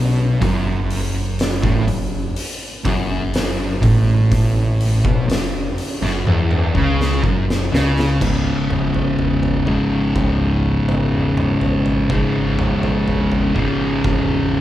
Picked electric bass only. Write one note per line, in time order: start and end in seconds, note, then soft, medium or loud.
0.00 0.38 B1 medium
0.42 1.60 F#1 loud
1.63 1.86 A1 medium
1.87 2.33 F#1 medium
2.85 3.79 F#1 loud
3.83 5.00 A1 loud
5.05 5.27 B1 loud
5.28 5.74 F#1 medium
6.01 6.24 F#1 loud
6.25 6.71 E1 medium
6.75 7.20 C#2 medium
7.24 7.69 F#1 medium
7.72 8.17 C#2 medium
8.21 8.50 C#1 medium
8.70 8.99 F#1 medium
9.19 9.77 E1 medium
10.16 10.74 C#1 medium
11.13 11.71 E1 medium
12.10 12.68 G#1 medium
13.07 13.65 E1 medium
14.04 14.61 E1 medium